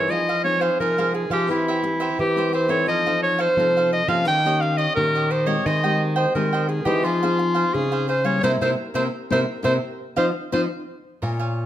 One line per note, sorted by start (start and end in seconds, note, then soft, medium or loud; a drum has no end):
0.00 0.21 C4 medium
0.00 0.21 D#4 medium
0.00 0.22 G#4 medium
0.00 0.12 C#5 medium
0.10 0.69 F3 loud
0.10 0.76 F3 medium
0.10 0.26 D#4 soft
0.10 0.27 G#4 soft
0.10 0.27 C5 soft
0.10 0.44 D#5 loud
0.10 0.27 F5 soft
0.29 0.61 G#4 soft
0.29 0.61 C5 medium
0.29 0.60 F5 medium
0.44 0.91 C4 medium
0.44 0.91 D#4 medium
0.44 0.91 G#4 medium
0.44 0.62 C#5 loud
0.61 0.78 G#4 soft
0.61 0.79 C5 medium
0.61 0.78 C5 medium
0.61 0.78 F5 medium
0.80 1.46 C3 medium
0.80 1.24 F3 medium
0.80 0.96 D#4 soft
0.80 0.96 G#4 medium
0.80 1.12 A#4 medium
0.80 0.96 C5 soft
0.80 0.97 F5 medium
0.98 1.44 C4 medium
0.98 1.44 D#4 medium
0.98 1.44 G#4 medium
0.98 1.13 G#4 medium
0.98 1.14 C5 medium
0.98 1.14 F5 medium
1.14 1.30 G#4 medium
1.14 muted cavaquinho stroke soft
1.30 1.49 F3 medium
1.30 1.48 G4 medium
1.30 1.48 G#4 medium
1.30 1.48 C5 medium
1.30 1.47 F5 medium
1.48 2.15 E3 medium
1.48 2.08 E3 medium
1.48 1.78 C4 medium
1.48 1.78 E4 medium
1.48 1.65 E4 soft
1.48 2.15 E4 medium
1.48 1.78 G4 medium
1.48 1.66 G4 soft
1.48 1.66 C5 soft
1.48 1.66 E5 soft
1.68 1.83 G4 medium
1.68 1.82 C5 medium
1.68 1.83 E5 medium
1.82 2.30 C4 soft
1.82 2.30 E4 medium
1.82 2.30 G4 medium
1.82 muted cavaquinho stroke soft
2.00 2.35 G4 medium
2.00 2.34 C5 medium
2.00 2.34 E5 medium
2.18 2.84 E3 medium
2.18 2.88 E3 medium
2.18 2.52 G4 medium
2.36 2.65 C4 medium
2.36 2.65 E4 medium
2.36 2.65 G4 medium
2.36 2.52 G4 medium
2.36 2.53 C5 medium
2.36 2.52 E5 medium
2.53 2.69 E4 soft
2.53 2.69 G4 soft
2.53 2.69 C5 soft
2.53 2.71 C5 medium
2.53 2.68 E5 medium
2.68 3.04 C4 medium
2.68 3.05 D#4 medium
2.68 2.87 G4 soft
2.68 3.05 A4 medium
2.68 2.86 C5 medium
2.68 2.87 C#5 medium
2.68 2.86 E5 medium
2.87 3.53 F3 medium
2.87 3.47 F3 loud
2.87 3.04 D#4 soft
2.87 3.04 A4 soft
2.87 3.05 C5 soft
2.87 3.20 D#5 medium
2.87 3.05 F5 soft
3.05 3.52 C4 medium
3.05 3.52 D#4 medium
3.05 3.52 A4 medium
3.05 3.39 A4 medium
3.05 3.38 C5 medium
3.05 3.37 F5 medium
3.23 3.42 C#5 loud
3.38 3.56 A4 medium
3.38 3.56 C5 medium
3.38 3.92 C5 loud
3.38 3.55 F5 medium
3.57 4.23 C3 medium
3.57 4.01 F3 medium
3.57 3.90 C4 soft
3.57 3.90 D#4 soft
3.57 3.74 D#4 soft
3.57 3.90 A4 medium
3.57 3.74 A4 soft
3.57 3.75 C5 medium
3.57 3.75 F5 soft
3.77 3.92 A4 medium
3.77 3.92 C5 medium
3.77 3.92 F5 medium
3.93 4.10 D#5 loud
3.93 muted cavaquinho stroke soft
4.08 4.27 F3 medium
4.08 4.38 A#3 medium
4.08 4.38 C#4 medium
4.08 4.38 G4 medium
4.08 4.26 A4 medium
4.08 4.25 C5 medium
4.08 4.25 F5 medium
4.08 4.27 F5 loud
4.27 4.93 D#3 medium
4.27 4.86 D#3 loud
4.27 4.43 D#4 soft
4.27 4.44 G4 soft
4.27 4.44 C#5 medium
4.27 4.44 D#5 medium
4.27 4.62 G5 loud
4.45 4.91 A#3 medium
4.45 4.91 C#4 medium
4.45 4.92 G4 medium
4.45 4.61 G4 medium
4.45 4.61 C#5 medium
4.45 4.61 D#5 medium
4.61 4.79 F5 medium
4.61 muted cavaquinho stroke soft
4.77 5.13 G4 medium
4.77 5.12 C#5 medium
4.77 4.95 D#5 medium
4.77 5.12 D#5 medium
4.95 5.62 A#2 medium
4.95 5.56 D#3 loud
4.95 5.29 A#3 soft
4.95 5.29 C#4 medium
4.95 5.29 G4 medium
4.95 5.33 A#4 loud
5.15 5.30 G4 medium
5.15 5.30 C#5 medium
5.15 5.30 D#5 medium
5.30 5.47 D#4 soft
5.30 5.47 G4 soft
5.30 5.48 C5 medium
5.30 5.46 C#5 medium
5.30 5.45 D#5 medium
5.46 5.76 G#3 medium
5.46 5.77 C4 medium
5.46 5.77 G4 medium
5.46 5.64 G4 medium
5.46 5.67 C#5 medium
5.46 5.64 C#5 medium
5.46 5.64 D#5 medium
5.66 6.32 D#3 medium
5.66 6.25 D#3 loud
5.66 5.82 G#4 soft
5.66 5.82 C5 medium
5.66 6.01 D#5 loud
5.66 5.82 D#5 soft
5.66 5.82 G5 medium
5.84 6.30 G#3 medium
5.84 6.30 C4 medium
5.84 6.31 G4 medium
5.84 6.16 C5 soft
5.84 6.16 D#5 medium
5.84 6.15 G5 medium
6.15 6.33 C5 medium
6.15 6.34 C5 medium
6.15 6.33 D#5 medium
6.15 6.33 G5 medium
6.35 6.80 D#3 medium
6.35 7.01 D#3 soft
6.35 6.82 G#3 medium
6.35 6.82 C4 medium
6.35 6.82 G4 medium
6.35 6.51 G#4 soft
6.35 6.70 A#4 medium
6.35 6.52 C5 medium
6.35 6.52 D#5 medium
6.35 6.51 G5 soft
6.53 6.68 C5 medium
6.53 6.68 D#5 medium
6.53 6.68 G5 medium
6.68 6.87 G#4 medium
6.68 muted cavaquinho stroke soft
6.85 7.04 E3 loud
6.85 7.16 C4 medium
6.85 7.16 D#4 medium
6.85 7.06 G4 medium
6.85 7.17 G#4 medium
6.85 7.03 C5 medium
6.85 7.03 D#5 medium
6.85 7.02 G5 medium
7.04 7.64 F3 loud
7.04 7.71 F3 medium
7.04 7.21 D#4 soft
7.04 7.75 F4 loud
7.04 7.21 G#4 medium
7.04 7.21 C5 soft
7.04 7.21 F5 medium
7.23 7.69 C4 medium
7.23 7.69 D#4 medium
7.23 7.70 G#4 medium
7.23 7.38 G#4 medium
7.23 7.38 C5 medium
7.23 7.39 F5 medium
7.39 muted cavaquinho stroke soft
7.54 7.90 G#4 medium
7.54 7.90 C5 medium
7.54 7.89 F5 medium
7.74 8.43 C#3 medium
7.74 8.07 C4 medium
7.74 8.07 D#4 medium
7.74 8.08 G#4 loud
7.74 8.08 G#4 medium
7.92 8.08 G#4 soft
7.92 8.08 C5 medium
7.92 8.08 F5 medium
8.08 8.25 D#4 soft
8.08 8.25 G#4 medium
8.08 8.26 C5 medium
8.08 8.24 C5 soft
8.08 8.23 F5 soft
8.24 8.43 G3 medium
8.24 8.42 A#3 medium
8.24 8.42 E4 medium
8.24 8.42 G#4 medium
8.24 8.42 C5 medium
8.24 8.43 C#5 medium
8.24 8.42 F5 medium
8.43 8.57 C3 loud
8.43 8.55 A#3 loud
8.43 8.55 C4 medium
8.43 8.55 E4 medium
8.43 8.55 A#4 medium
8.43 8.52 C5 medium
8.43 8.55 C5 medium
8.43 8.55 E5 medium
8.61 8.74 C3 loud
8.61 8.73 A#3 medium
8.61 8.73 C4 medium
8.61 8.72 E4 medium
8.61 8.73 A#4 medium
8.61 8.70 C5 medium
8.61 8.73 C5 medium
8.61 8.73 E5 medium
8.94 9.08 C3 medium
8.94 9.06 A#3 medium
8.94 9.06 C4 medium
8.94 9.06 E4 medium
8.94 9.07 A#4 medium
8.94 9.03 C5 medium
8.94 9.07 C5 medium
8.94 9.07 E5 medium
9.30 9.44 C3 medium
9.30 9.42 A#3 medium
9.30 9.42 C4 medium
9.30 9.42 E4 medium
9.30 9.43 A#4 medium
9.30 9.40 C5 medium
9.30 9.43 C5 medium
9.30 9.43 E5 medium
9.62 9.78 C3 medium
9.62 9.75 A#3 medium
9.62 9.75 C4 medium
9.62 9.75 E4 medium
9.62 9.76 A#4 medium
9.62 9.76 C5 medium
9.62 9.74 C5 medium
9.62 9.76 E5 medium
10.16 10.31 F3 medium
10.16 10.28 C4 medium
10.16 10.28 D#4 medium
10.16 10.28 F4 medium
10.16 10.28 C5 medium
10.16 10.26 C5 medium
10.16 10.28 D#5 medium
10.16 10.28 F5 medium
10.52 10.66 F3 medium
10.52 10.64 C4 medium
10.52 10.64 D#4 medium
10.52 10.64 F4 medium
10.52 10.64 C5 medium
10.52 10.61 C5 medium
10.52 10.64 D#5 medium
10.52 10.64 F5 medium
11.22 11.66 A#2 medium
11.22 11.66 A#2 loud
11.22 11.38 A#4 soft
11.22 11.38 C#5 soft
11.22 11.38 F5 medium
11.22 11.38 G#5 medium
11.39 11.66 C#5 soft
11.39 11.66 F5 soft
11.39 11.66 G#5 medium